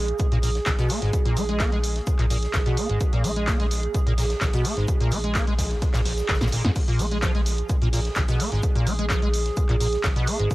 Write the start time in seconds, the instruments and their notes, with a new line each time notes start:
Already playing: analog synth bass A#1, ambient pad G#4
0.08 closed hi-hat
0.19 kick, closed hi-hat, shaker
0.32 analog synth bass A#1, acid bass A#2, closed hi-hat
0.42 acid bass A#2, snare, open hi-hat, shaker
0.55 snare, closed hi-hat
0.66 analog synth bass A#1, acid bass C#3, kick, snare, clap, closed hi-hat, shaker
0.79 acid bass B2, closed hi-hat
0.89 acid bass A#3, snare, open hi-hat, shaker
1.02 analog synth bass G#1, acid bass G#2, snare, closed hi-hat
1.13 kick, closed hi-hat, shaker
1.25 acid bass A#2, closed hi-hat
1.37 analog synth bass A#1, acid bass A#3, open hi-hat, shaker
1.49 acid bass G#3, closed hi-hat
1.60 acid bass A#3, kick, snare, clap, closed hi-hat, shaker
1.72 analog synth bass A#1, acid bass G#3, closed hi-hat
1.84 open hi-hat, shaker
1.96 snare, closed hi-hat
2.07 kick, closed hi-hat, shaker
2.19 analog synth bass A#1, acid bass A#2, clap, closed hi-hat
2.30 acid bass A#2, open hi-hat, shaker
2.43 snare, closed hi-hat
2.53 analog synth bass A#1, acid bass C#3, kick, snare, clap, closed hi-hat, shaker
2.66 acid bass B2, closed hi-hat
2.77 acid bass A#3, open hi-hat, shaker
2.89 analog synth bass G#1, acid bass G#2, closed hi-hat
3.01 kick, closed hi-hat, shaker
3.13 acid bass A#2, closed hi-hat
3.24 analog synth bass A#1, acid bass A#3, open hi-hat, shaker
3.36 acid bass G#3, closed hi-hat
3.47 acid bass A#3, kick, snare, clap, closed hi-hat, shaker
3.60 analog synth bass A#1, acid bass G#3, snare, closed hi-hat
3.71 snare, open hi-hat, shaker
3.83 closed hi-hat
3.94 kick, closed hi-hat, shaker
4.07 analog synth bass A#1, acid bass A#2, closed hi-hat
4.18 acid bass A#2, snare, open hi-hat, shaker
4.30 snare, closed hi-hat
4.41 analog synth bass A#1, acid bass C#3, kick, snare, clap, closed hi-hat, shaker
4.53 acid bass B2, closed hi-hat
4.64 acid bass A#3, snare, open hi-hat, shaker
4.77 analog synth bass G#1, acid bass G#2, snare, closed hi-hat
4.88 kick, closed hi-hat, shaker
5.00 acid bass A#2, closed hi-hat
5.11 analog synth bass A#1, acid bass A#3, open hi-hat, shaker
5.24 acid bass G#3, closed hi-hat
5.35 acid bass A#3, kick, snare, clap, closed hi-hat, shaker
5.47 analog synth bass A#1, acid bass G#3, closed hi-hat
5.58 kick, snare, open hi-hat, shaker
5.71 snare, closed hi-hat
5.82 kick, snare, closed hi-hat, shaker
5.93 analog synth bass A#1, acid bass A#2, snare, clap, closed hi-hat, shaker
6.05 acid bass A#1, snare, open hi-hat
6.17 snare, closed hi-hat, shaker
6.28 analog synth bass G#1, acid bass D#3, kick, snare, clap, closed hi-hat, shaker
6.34 snare, shaker
6.41 acid bass A#2, snare, closed hi-hat, shaker
6.47 snare, shaker
6.52 acid bass A#2, snare, open hi-hat, shaker
6.64 analog synth bass F2, acid bass G#2, snare
6.76 ambient pad G#4, kick, closed hi-hat, crash, shaker
6.88 acid bass A#2, closed hi-hat
6.99 analog synth bass A#1, acid bass A#3, open hi-hat, shaker
7.11 acid bass G#3, closed hi-hat
7.22 acid bass F3, kick, snare, clap, closed hi-hat, shaker
7.35 analog synth bass A#1, acid bass G#3, snare, closed hi-hat
7.46 snare, open hi-hat, shaker
7.58 closed hi-hat
7.69 kick, closed hi-hat, shaker
7.82 analog synth bass A#1, acid bass A#2, closed hi-hat
7.93 acid bass A#2, snare, open hi-hat, shaker
8.05 snare, closed hi-hat
8.16 analog synth bass A#1, acid bass C#3, kick, snare, clap, closed hi-hat, shaker
8.28 acid bass B2, closed hi-hat
8.40 acid bass A#3, snare, open hi-hat, shaker
8.52 analog synth bass G#1, acid bass G#2, snare, closed hi-hat
8.63 kick, closed hi-hat, shaker
8.75 acid bass A#2, closed hi-hat
8.87 analog synth bass A#1, acid bass A#3, open hi-hat, shaker
8.99 acid bass G#3, closed hi-hat
9.09 acid bass F3, kick, snare, clap, closed hi-hat, shaker
9.22 analog synth bass A#1, acid bass G#3, closed hi-hat
9.34 open hi-hat, shaker
9.46 snare, closed hi-hat
9.57 kick, closed hi-hat, shaker
9.69 analog synth bass A#1, acid bass A#2, clap, closed hi-hat
9.80 acid bass A#2, open hi-hat, shaker
9.93 snare, closed hi-hat
10.03 analog synth bass A#1, acid bass C#3, kick, snare, clap, closed hi-hat, shaker
10.16 acid bass B2, closed hi-hat
10.27 acid bass A#3, open hi-hat, shaker
10.39 analog synth bass G#1, acid bass G#2, closed hi-hat
10.51 kick, closed hi-hat, shaker